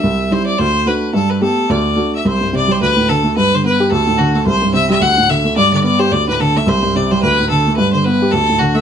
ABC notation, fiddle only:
X:1
M:4/4
L:1/8
Q:"Swing" 1/4=217
K:Dmix
V:1 name="Fiddle"
e2 c d c2 B2 | A B A2 d3 e | c2 d c B2 A2 | B c B2 A2 F A |
c2 e e f2 e2 | d d d c d B A e | c2 d c B2 A2 | B c B2 A2 F e |]